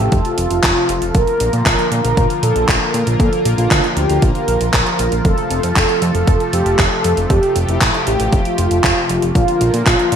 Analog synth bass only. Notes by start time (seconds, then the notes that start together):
0.12 F1
0.38 F1
0.51 F1
0.63 F1
0.89 F1
1.02 F1
1.15 A#1
1.40 A#1
1.53 A#2
1.66 A#1
1.92 A#2
2.04 A#1
2.17 A#1
2.43 A#2
2.56 A#1
2.69 A#1
2.94 A#2
3.07 A#1
3.20 A#2
3.45 A#1
3.58 A#1
3.71 D2
3.97 D2
4.10 D2
4.22 A#1
4.48 A#1
4.61 A#1
4.74 A#1
4.99 A#1
5.12 A#1
5.25 F1
5.51 F1
5.63 F2
5.76 F1
6.02 F2
6.15 F1
6.28 F1
6.53 F2
6.66 F1
6.79 F1
7.05 F2
7.17 F1
7.30 F2
7.56 F1
7.69 F1
7.81 A1
8.07 A1
8.20 A1
8.33 F1
8.58 F1
8.71 F1
8.84 F1
9.10 F1
9.22 F1
9.35 A#1
9.61 A#1
9.74 A#2
9.86 A#1
10.12 A#2